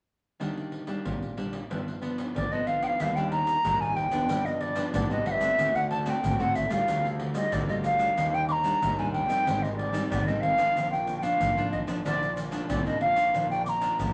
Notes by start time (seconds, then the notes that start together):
0.40 D#3 G3 A#3 D4, pandeiro, surdo
0.57 pandeiro
0.72 pandeiro
0.87 G3 A#3 D4, pandeiro
1.05 A#2, pandeiro, surdo
1.23 pandeiro
1.37 G3 A#3 D4, pandeiro
1.53 pandeiro
1.70 G2 F3 B3 D4, pandeiro, surdo
1.88 pandeiro
2.01 F3 B3 D4, pandeiro
2.18 pandeiro
2.35 D3 D5, pandeiro, surdo
2.52 F3 B3 D4 D#5, pandeiro
2.67 F5, pandeiro
2.83 G5, pandeiro
2.87 F5
3.00 D#2 D#3 G3 A#3 D4 E5 F5, pandeiro, shaker, surdo
3.15 G3 A#3 D4 G5, pandeiro, shaker
3.31 A#5, pandeiro
3.47 pandeiro, shaker
3.64 D#2 A#2 G3 A#3 D4, pandeiro, shaker, surdo
3.81 G#5, pandeiro, shaker
3.96 G5, pandeiro
4.11 D#2 F3 B3 D4, pandeiro, shaker
4.29 G2, pandeiro, shaker, surdo
4.45 D#5, pandeiro, shaker
4.61 D5, pandeiro
4.75 F3 B3 D4, pandeiro, shaker
4.93 G2 D3 D5, pandeiro, shaker, surdo
5.10 F3 B3 D4 D#5, pandeiro, shaker
5.26 F#5, pandeiro
5.31 E5
5.41 A3 C4 F#4, pandeiro, shaker
5.58 D2 D3, pandeiro, shaker, surdo
5.75 F#5, pandeiro, shaker
5.90 A5, pandeiro
6.05 A3 C4 F#4 A5, pandeiro, shaker
6.09 G5
6.23 D2 A2, pandeiro, shaker, surdo
6.39 A3 C4 F#4 F#5, pandeiro, shaker
6.55 E5, pandeiro, shaker, surdo
6.69 D2 G3 A#3 F4 F5, pandeiro, shaker
6.87 D2 D3, pandeiro, shaker, surdo
7.05 pandeiro, shaker
7.20 pandeiro
7.34 G3 A#3 F4 D#5, pandeiro, shaker
7.52 D2 D3 D5, pandeiro, shaker, surdo
7.69 G3 A#3 F4 D#5, pandeiro, shaker
7.84 F5, pandeiro, shaker
7.98 G3 A#3 D4, pandeiro, shaker
8.16 D#2 D#3, pandeiro, shaker, surdo
8.34 G5, pandeiro, shaker
8.48 A#5 D6, pandeiro
8.63 G3 A#3 D4, pandeiro, shaker
8.81 D#2 A#2, pandeiro, shaker, surdo
8.99 G3 A#3 D4 G#5, pandeiro, shaker
9.13 G5, pandeiro
9.28 A#1 G3 C4 D#4, pandeiro, shaker
9.46 G#1 G#2, pandeiro, shaker, surdo
9.62 D#5, pandeiro, shaker
9.76 D5, pandeiro
9.92 G3 C4 D#4, pandeiro, shaker
10.09 G#1 D#3 D5, pandeiro, shaker, surdo
10.26 G3 C4 D#4 D#5, pandeiro, shaker
10.40 F5, pandeiro
10.58 F3 A#3 D4, pandeiro, shaker
10.75 A#1 A#2, pandeiro, shaker, surdo
10.91 G5, pandeiro, shaker
11.07 pandeiro, shaker
11.17 G5
11.22 F3 A#3 D4 F5, pandeiro, shaker
11.40 A#1 F3, pandeiro, shaker, surdo
11.57 F3 A#3 D4, pandeiro, shaker
11.72 D#5, pandeiro, surdo
11.87 A#1 F3 A#3 D4, pandeiro, shaker
12.05 A#1 A#2 F3 A#3 D4 D5, pandeiro, shaker, surdo
12.22 pandeiro, shaker
12.37 pandeiro, shaker
12.51 F3 A#3 D4, pandeiro, shaker
12.68 C2 F3 D5, pandeiro, shaker, surdo
12.86 F3 A#3 D4 D#5, pandeiro, shaker
13.01 A#1 F5, pandeiro
13.16 F3 A#3 D4, pandeiro, shaker
13.34 A#1 A#2 F3 A#3 D4, pandeiro, shaker, surdo
13.50 G5, pandeiro, shaker
13.65 A#5 D6, pandeiro, shaker
13.81 F3 A#3 D4, pandeiro, shaker
13.99 A#1 F3, pandeiro, shaker, surdo